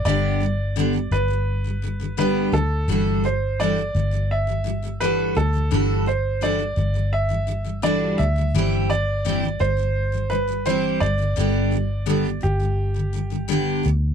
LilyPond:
<<
  \new Staff \with { instrumentName = "Upright piano" } { \time 4/4 \key g \major \tempo 4 = 85 d''4. b'4. b'8 a'8~ | a'8 c''8 d''4 e''4 b'8 a'8~ | a'8 c''8 d''4 e''4 d''8 e''8~ | e''8 d''4 c''4 b'8 c''8 d''8~ |
d''4. g'2 r8 | }
  \new Staff \with { instrumentName = "Steel-string acoustic guitar" } { \clef bass \time 4/4 \key g \major <g, d g b d' g'>8 <g, d g>8 <g, d g b d' g'>16 <g, d g>16 <g, d g>16 <g, d g>8 <g, d g>16 <g, d g>16 <g, d g>16 <g, d g b d' g'>8 <g, d g>8 | <g, e g d' fis' a'>8 <g, e g>8 <g, e g d' fis' a'>16 <g, e g>16 <g, e g>16 <g, e g>8 <g, e g>16 <g, e g>16 <g, e g>16 <g, e g d' fis' a'>8 <g, e g>16 <g, e g>16 | <g, e g d' fis' a'>8 <g, e g>8 <g, e g d' fis' a'>16 <g, e g>16 <g, e g>16 <g, e g>8 <g, e g>16 <g, e g>16 <g, e g>16 <g, e g d' fis' a'>8 <g, e g>16 <g, e g>16 | <g, e g c' e' g'>8 <g, e g>8 <g, e g c' e' g'>16 <g, e g>16 <g, e g>16 <g, e g>8 <g, e g>16 <g, e g>16 <g, e g>16 <g, e g c' e' g'>8 <g, d g>16 <g, d g>16 |
<g, d g b d' g'>8 <g, d g>8 <g, d g b d' g'>16 <d g>16 <g, d g>16 <g, d g>8 <g, d g>16 <g, d g>16 <g, d g>16 <g, d g b d' g'>8 <g, d g>8 | }
  \new Staff \with { instrumentName = "Fingered electric bass" } { \clef bass \time 4/4 \key g \major g,,4. g,,2 d,8 | g,,4. g,,2 d,8 | g,,4. g,,2 d,8 | g,,4. g,,2 g,,8 |
g,,4. g,,2 d,8 | }
>>